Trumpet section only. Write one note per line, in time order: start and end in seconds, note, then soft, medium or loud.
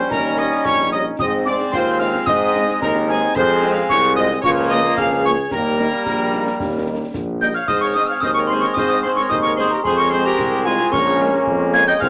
0.11 0.38 A#4 loud
0.39 0.51 D#5 loud
0.67 0.91 C#5 loud
0.93 1.05 D#5 loud
1.20 1.32 D#5 loud
1.47 1.59 D5 loud
1.75 2.00 C5 loud
2.01 2.13 F5 loud
2.28 2.78 D#5 loud
2.82 3.07 A#4 loud
3.10 3.36 G#4 loud
3.36 3.70 C5 loud
3.72 3.80 F5 loud
3.89 4.01 C#5 loud
4.16 4.42 D#5 loud
4.42 4.55 C#5 loud
4.69 4.82 D#5 loud
4.95 5.08 F5 loud
5.25 5.37 C#5 loud
5.51 7.10 A#4 loud
7.41 7.54 G5 loud
7.56 7.68 F5 loud
7.67 7.80 D#5 loud
7.83 7.95 C#5 loud
7.97 8.02 D#5 loud
8.10 8.16 F5 loud
8.23 8.29 D#5 loud
8.38 8.44 C#5 loud
8.52 8.63 C5 loud
8.67 8.72 C#5 loud
8.78 8.90 D#5 loud
8.93 8.99 D#5 loud
9.06 9.11 C5 loud
9.20 9.31 C#5 loud
9.31 9.37 D#5 loud
9.46 9.52 C#5 loud
9.59 9.71 C5 loud
9.74 9.80 A#4 loud
9.87 9.98 C5 loud
10.01 10.13 C#5 loud
10.13 10.25 C5 loud
10.27 10.64 A#4 loud
10.66 10.93 G#4 loud
10.92 11.46 C#5 loud
11.73 11.86 G#5 loud
11.87 12.00 G5 loud
11.99 12.09 F5 loud